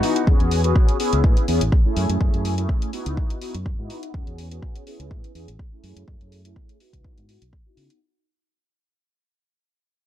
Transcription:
Already playing: E3 B3 D#4 F#4
0.02 E3 B3 D#4 F#4, open hi-hat
0.16 closed hi-hat
0.27 E2 B3 C#4 F#4 G#4, kick
0.40 E2, closed hi-hat
0.51 open hi-hat
0.64 B3 C#4 F#4 G#4, closed hi-hat
0.76 kick
0.89 closed hi-hat
0.99 B3 C#4 E4 G#4, open hi-hat
1.13 C#2, closed hi-hat
1.24 A2, kick
1.37 closed hi-hat
1.48 E2 B3 C#4 E4 G#4, open hi-hat
1.61 A1, closed hi-hat
1.72 kick
1.85 A3 C#4 E4 G#4
1.96 F#2, open hi-hat
2.09 F#2, closed hi-hat
2.20 F#2 A3 C#4 E4 G#4, kick
2.34 F#2, closed hi-hat
2.45 open hi-hat
2.57 A3 C#4 E4 G#4, closed hi-hat
2.69 kick
2.82 closed hi-hat
2.92 B3 D#4 E4 F#4, open hi-hat
3.06 C#2, closed hi-hat
3.17 kick
3.30 closed hi-hat
3.41 B3 D#4 E4 F#4, open hi-hat
3.54 F#2, closed hi-hat
3.66 kick
3.78 G#2 B3 D#4 E4 F#4
3.90 open hi-hat
4.03 closed hi-hat
4.13 E2 B3 C#4 F#4 G#4, kick
4.27 E2, closed hi-hat
4.38 open hi-hat
4.51 B3 C#4 F#4 G#4, closed hi-hat
4.62 kick
4.76 closed hi-hat
4.86 B3 C#4 E4 G#4, open hi-hat
5.00 C#2, closed hi-hat
5.11 A2, kick
5.24 closed hi-hat
5.34 E2 B3 C#4 E4 G#4, open hi-hat
5.48 A1, closed hi-hat
5.59 kick
5.72 A3 C#4 E4 G#4
5.83 F#2, open hi-hat
5.96 F#2, closed hi-hat
6.07 A3 C#4 E4 G#4, kick
6.20 F#2, closed hi-hat
6.32 open hi-hat
6.45 A3 C#4 E4 G#4, closed hi-hat
6.56 kick
6.69 closed hi-hat
6.80 B3 D#4 E4 F#4, open hi-hat
6.93 C#2, kick, closed hi-hat
7.04 kick
7.18 G#2, closed hi-hat
7.28 B3 D#4 E4 F#4, open hi-hat
7.42 B1, closed hi-hat
7.53 kick
7.65 B3 D#4 E4 F#4
7.77 C#3, open hi-hat
7.90 closed hi-hat

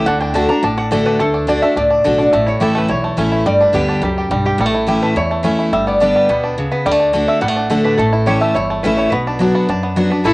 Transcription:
Already playing: A3
0.06 D2 D3 D4 F#5
0.20 D4 G5
0.34 D3 A3 D4 F#4 A5
0.49 D4 F#4 A#5
0.63 A1 A2 D4 A5
0.78 D4 F#5
0.91 D3 A3 D4 F#4
1.06 D4 B4
1.19 D2 D3 A3 A4
1.34 D4
1.47 D3 A3 D4 F#4 D5
1.62 A3 D4 F#4 E5
1.76 C#2 A2 D4 D5
1.90 D4
2.04 B1 D3 A3 D4 F#4
2.18 D4 F#4 D5
2.32 A1 A2 A3 E5
2.46 E4 C#5
2.60 C#2 E3 A3 C#4 E4 G4 A4
2.75 A3 B4
2.88 B1 E2 E4 C#5
3.04 A3
3.17 A1 E3 A3 C#4 E4
3.32 E4
3.46 G1 G2 G3 D5
3.61 D4 B4
3.73 D2 D3 G3 B3 G4 B4
3.89 D4
4.02 C#2 F#2 G3 G4
4.18 G4
4.30 B1 G2 G3
4.45 G4
4.58 A1 A2 G3 A4
4.66 A3
4.74 E4
4.87 E3 A3 C#4 E4 G4
5.02 A3 B4
5.16 E2 E4 C#5
5.31 A3
5.43 E3 A3 C#4 E4
5.59 E4
5.73 G1 G2 G3 E5
5.87 B3 D5
6.00 D3 G3 B3 D4 G4 D5
6.16 G3
6.29 D2 B2 B3 B4
6.44 D4
6.58 C#3
6.72 B3 B4
6.85 D2 D3 G3 D5
6.91 A3
7.00 D4
7.13 D3 A3 D4 F#4
7.28 D4 E5
7.41 A1 A2 G3 F#5
7.48 A3
7.56 D4
7.70 D3 A3 D4 F#4
7.84 D4 B4
7.98 A1 A2 A3 A4
8.13 E4
8.26 E3 A3 C#4 E4 G4 C#5
8.41 A3 E5
8.54 G1 E2 E4 C#5
8.70 A3
8.83 A1 E3 A3 C#4 E4 B4
8.97 E4 C#5
9.10 B1 B2 B3 B4
9.27 D4
9.39 F#3 B3 D4 F#4
9.55 B3
9.69 F#2 D4
9.83 B3
9.96 F#3 B3 D4 F#4
10.10 D4 F#4 B4
10.25 A1 A2 A3 E4 A4

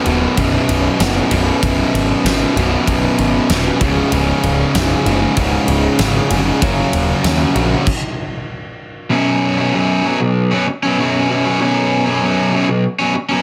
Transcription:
0.05 D#1 B1 F#2 B2, ride
0.37 B0 B1 F#2 B2, kick, ride
0.68 B0, ride
0.99 F#1 B1 F#2 B2, snare, ride
1.31 B0 B1 F#2 B2, ride
1.63 B0 B1 F#2 B2, kick, ride
1.94 G#1, ride
2.24 G#1 B1 F#2 B2, snare, ride
2.55 B0 B1 F#2 B2, ride
2.87 B0 B1 F#2 B2, kick, ride
3.18 G#1, ride
3.49 D#1 B1 F#2 B2, snare, ride
3.81 C#1 C#2 G#2 C#3, kick, ride
4.12 C#1 C#2 G#2 C#3, ride
4.43 C#1, ride
4.74 B0 C#2 G#2 C#3, snare, ride
5.05 F#1 C#2 G#2 C#3, ride
5.37 C#1 C#2 G#2 C#3, kick, ride
5.67 C#1, ride
5.98 G#1 C#2 G#2 C#3, snare, ride
6.30 F1 C#2 G#2 C#3, ride
6.61 F#1 F#2 C#3 F#3, kick, ride
6.93 D#1, ride
7.23 D#2 F#2 C#3 F#3, snare, ride
7.55 A#1 F#2 C#3 F#3, ride
7.87 kick, crash
9.10 B1 F#2 B2 F#3 C#4
9.57 B2 F#3 C#4
9.73 B1 F#2 B2 F#3 C#4
10.03 F#2 B2 F#3 C#4
10.20 muted overdriven electric guitar stroke
10.51 B2 F#3 C#4
10.67 muted overdriven electric guitar stroke
10.83 B2 F#3 C#4
10.98 B1 F#2 B2 F#3 C#4
11.29 F#2 B2 F#3 C#4
11.44 B2 F#3 C#4
11.59 B1 F#2 B2 F#3 C#4
12.06 B2 F#3 C#4
12.22 B1 F#2 B2 F#3 C#4
12.52 F#2 B2 F#3 C#4
12.68 muted overdriven electric guitar stroke
12.99 B2 F#3 C#4
13.15 muted overdriven electric guitar stroke
13.29 B2 F#3 C#4

